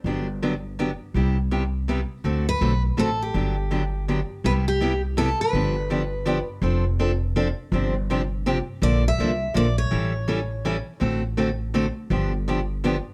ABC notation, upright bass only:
X:1
M:3/4
L:1/8
Q:"Swing" 1/4=164
K:G
V:1 name="Upright bass" clef=bass
G,,,6 | C,,6 | D,,2 B,,,2 A,,,2 | G,,,6 |
[K:C] C,,6 | G,,,6 | F,,,6 | G,,,6 |
_B,,,2 C,,2 B,,,2 | A,,,6 | A,,,6 | G,,,6 |]